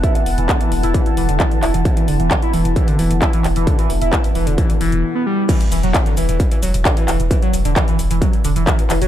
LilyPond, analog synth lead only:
\new Staff \with { instrumentName = "Analog synth lead" } { \clef bass \time 4/4 \key c \lydian \tempo 4 = 132 e'16 e16 r16 e16 d16 e16 r16 e'16 e16 r16 e16 d16 e16 r16 e'16 e16 | r16 e16 d16 e16 r16 e'16 e16 r16 e16 d16 e16 r16 e'16 e16 r16 e16 | d16 e16 r16 e'16 e16 r16 e16 d16 e16 r16 e16 e16 r16 b16 g16 g16 | e16 r16 e16 fis16 r16 d16 e16 e16 r16 e16 fis16 r16 d16 e16 e16 r16 |
e16 fis16 r16 d16 e16 e16 r16 e16 fis16 r16 d16 e16 e16 r16 e16 fis16 | }